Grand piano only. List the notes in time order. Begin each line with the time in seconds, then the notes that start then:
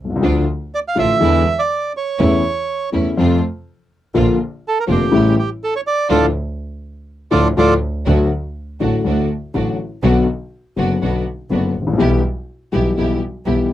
0.04 B1
0.10 C2
0.16 C#2
0.21 D2 D3 F3 A3 F4
0.95 A1 A2 D3 F3 A3 F4
1.19 E2 D3 E3 G#3 B3 E4
2.20 E2 C#3 E3 A3 E4
2.92 E2 C#3 E3 A3 E4
3.17 F2 C3 F3 A3 F4
4.14 A#1 A#2 D3 F3 A#3 F4
4.87 F1 F2 D3 F3 A#3 F4
5.12 A1 A2 C#3 G3 A3 E4
6.10 A2 D3 F3
7.31 A2 D3 F3
7.57 A2 D3 F3
8.07 D2 D3 F#3 A3 F#4
8.80 A1 A2 D3 F#3 A3 F#4
9.04 D2 D3 F#3 A3 F#4
9.54 A1 A2 D3 F#3 A3 F#4
10.03 B1 B2 D3 F#3 B3 F#4
10.76 F#1 F#2 D3 F#3 B3 F#4
11.01 B1 B2 D3 F#3 B3 F#4
11.50 F#1 F#2 D3 F#3 B3 F#4
11.82 G#1
11.87 A1
11.93 A#1
11.97 B1 B2 E3 G3 B3 G4
12.72 B1 B2 E3 G3 B3 G4
12.98 B1 B2 E3 G3 B3 G4
13.46 B1 B2 E3 G3 B3 G4